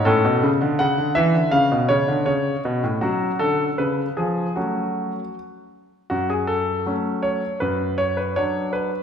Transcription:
<<
  \new Staff \with { instrumentName = "Grand piano" } { \time 2/4 \key fis \minor \tempo 4 = 80 << { a'4 fis''8 e''8 | eis''8 cis''8 cis''8 r8 | fis'8 a'8 b'8 gis'8 | fis'4 r4 |
fis'16 gis'16 a'4 cis''8 | b'8 cis''16 b'16 cis''8 b'8 | } \\ { cis'2 | cis'2 | cis'4 r4 | r2 |
r2 | r2 | } >> }
  \new Staff \with { instrumentName = "Grand piano" } { \clef bass \time 2/4 \key fis \minor a,16 b,16 cis16 d16 cis16 d16 e16 d16 | cis16 b,16 cis16 d16 cis8 b,16 a,16 | fis8 d8 cis8 eis8 | <fis a cis'>4 r4 |
fis,4 <fis a cis'>4 | fis,4 <fis d'>4 | }
>>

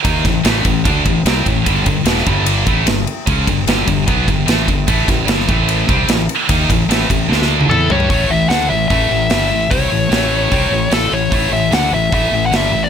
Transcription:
<<
  \new Staff \with { instrumentName = "Lead electric guitar" } { \time 4/4 \key g \lydian \tempo 4 = 149 r1 | r1 | r1 | r1 |
r2. a'8 cis''8~ | cis''8 e''8 fis''8 e''8 e''2 | cis''2. a'8 cis''8~ | cis''8 e''8 fis''8 e''8 e''8. fis''16 e''8. d''16 | }
  \new Staff \with { instrumentName = "Distorted electric guitar" } { \clef bass \time 4/4 \key g \lydian <dis bes dis'>8 <a, e>8 <a, e a>8 <a, e>8 <d a d'>8 <a, e>8 <c g c'>8 <a, e>8 | <g, d g>8 <g, d>8 <e, b, e>8 <g, d g>4 <a, e a>8 <g, d>8 r8 | <cis gis cis'>8 <g, d>8 <g, d g>8 <g, d>8 <b, fis b>8 <g, d>8 <a, e a>8 <g, d>8 | <a, e a>8 <a, e>8 <g, d g>8 <a, e a>4 <c g c'>8 <a, e>8 r8 |
<dis bes dis'>8 <a, e>8 <a, e a>8 <a, e>8 <d a d'>4 <e b e'>8 <g d' g'>8 | <a, e a>8 <a, e>8 <d a d'>8 <a, e>8 <a, e a>8 <a, e>8 <g, d g>8 <a, e>8 | <c g c'>8 <a, e>8 <a, e a>4 <c g c'>8 <a, e>8 <a, e a>8 <a, e>8 | <a, e a>8 <a, e>8 <d a d'>8 <a, e>8 <a, e a>8 <a, e>8 <g, d g>8 <a, e>8 | }
  \new Staff \with { instrumentName = "Distorted electric guitar" } { \clef bass \time 4/4 \key g \lydian <dis bes dis'>8 <a, e>8 <a, e a>8 <a, e>8 <d a d'>8 <a, e>8 <c g c'>8 <a, e>8 | <g, d g>8 <g, d>8 <e, b, e>8 <g, d g>4 <a, e a>8 <g, d>8 r8 | <cis gis cis'>8 <g, d>8 <g, d g>8 <g, d>8 <b, fis b>8 <g, d>8 <a, e a>8 <g, d>8 | <a, e a>8 <a, e>8 <g, d g>8 <a, e a>4 <c g c'>8 <a, e>8 r8 |
<dis bes dis'>8 <a, e>8 <a, e a>8 <a, e>8 <d a d'>4 <e b e'>8 <g d' g'>8 | <a, e a>8 <a, e>8 <d a d'>8 <a, e>8 <a, e a>8 <a, e>8 <g, d g>8 <a, e>8 | <c g c'>8 <a, e>8 <a, e a>4 <c g c'>8 <a, e>8 <a, e a>8 <a, e>8 | <a, e a>8 <a, e>8 <d a d'>8 <a, e>8 <a, e a>8 <a, e>8 <g, d g>8 <a, e>8 | }
  \new Staff \with { instrumentName = "Fingered electric bass" } { \clef bass \time 4/4 \key g \lydian dis,8 a,,8 a,,8 a,,8 d,8 a,,8 c,8 a,,8 | g,,8 g,,8 e,,8 g,,4 a,,8 g,,8 r8 | cis,8 g,,8 g,,8 g,,8 b,,8 g,,8 a,,8 g,,8 | a,,8 a,,8 g,,8 a,,4 c,8 a,,8 r8 |
dis,8 a,,8 a,,8 a,,8 d,4 e,8 g,8 | a,,8 a,,8 d,8 a,,8 a,,8 a,,8 g,,8 a,,8 | c,8 a,,8 a,,4 c,8 a,,8 a,,8 a,,8 | a,,8 a,,8 d,8 a,,8 a,,8 a,,8 g,,8 a,,8 | }
  \new DrumStaff \with { instrumentName = "Drums" } \drummode { \time 4/4 <bd cymr>8 <bd cymr sn>8 <cymr sn>16 sn16 <bd cymr>8 <bd cymr>8 <bd cymr>8 <cymr sn>8 <bd cymr>8 | <bd cymr>8 <bd cymr>8 <cymr sn>16 sn16 <bd cymr>8 cymr8 <bd cymr>8 <cymr sn>8 cymr8 | <bd cymr>8 <bd cymr>8 <cymr sn>8 <bd cymr>8 <bd cymr>8 <bd cymr>8 <cymr sn>8 <bd cymr>8 | <bd cymr>8 <bd cymr sn>8 <cymr sn>16 sn16 <bd cymr>8 cymr8 <bd cymr>8 <cymr sn>8 cymr8 |
<bd cymr>8 <bd cymr>8 <cymr sn>16 sn16 <bd cymr>8 sn16 sn8 tommh16 toml8 tomfh16 tomfh16 | <hho bd>4 <hho sn>4 <hho bd>4 <hho sn>4 | <hho bd>4 <hho sn>4 <hho bd>4 <hho sn>4 | <hho bd>4 <hho sn>4 <hho bd>4 <hho sn>4 | }
>>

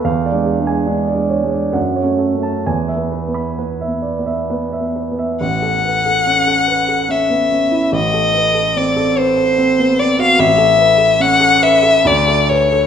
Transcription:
<<
  \new Staff \with { instrumentName = "Violin" } { \time 3/4 \key a \major \tempo 4 = 71 r2. | r2. | fis''2 e''4 | ees''4 d''8 c''4 d''16 f''16 |
e''4 fis''8 e''8 d''8 cis''8 | }
  \new Staff \with { instrumentName = "Grand piano" } { \time 3/4 \key a \major << { f''16 d''16 gis'16 gis''16 gis'16 d''16 cis''16 d''16 fis''16 cis''16 a'16 a''16 | gis''16 e''16 b'16 b''16 b'16 e''16 d''16 e''16 b'16 e''16 b'16 e''16 | r2. | r2. |
r2. | } \\ { \tuplet 3/2 { e,8 <gis d'>8 <gis d'>8 <gis d'>8 <gis d'>8 <gis d'>8 fis,8 <a cis'>8 <a cis'>8 } | \tuplet 3/2 { e,8 b8 b8 b8 b8 b8 b8 b8 b8 } | a,,16 a'16 b'16 a'16 cis'16 a'16 b'16 a'16 cis'16 b16 cis'16 e'16 | a,,16 a'16 b'16 a'16 c'16 a'16 b'16 a'16 c'16 b16 c'16 fis'16 |
a,,16 a'16 b'16 a'16 cis'16 a'16 b'16 a'16 d,16 a'16 b'16 a'16 | } >> }
>>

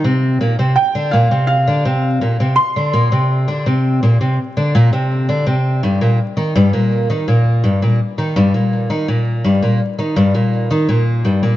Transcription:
<<
  \new Staff \with { instrumentName = "Felt piano" } { \time 4/4 \key bes \major \tempo 4 = 83 r4 g''8 f''8 f''4. c'''8~ | c'''2~ c'''8 r4. | r1 | r1 | }
  \new Staff \with { instrumentName = "Twelve-string acoustic guitar" } { \clef bass \time 4/4 \key bes \major c8 bes,16 c16 r16 d16 bes,16 c8 d16 c8 bes,16 c16 r16 d16 | bes,16 c8 d16 c8 bes,16 c16 r16 d16 bes,16 c8 d16 c8 | g,16 bes,16 r16 ees16 g,16 bes,8 ees16 bes,8 g,16 bes,16 r16 ees16 g,16 bes,16~ | bes,16 ees16 bes,8 g,16 bes,16 r16 ees16 g,16 bes,8 ees16 bes,8 g,16 bes,16 | }
>>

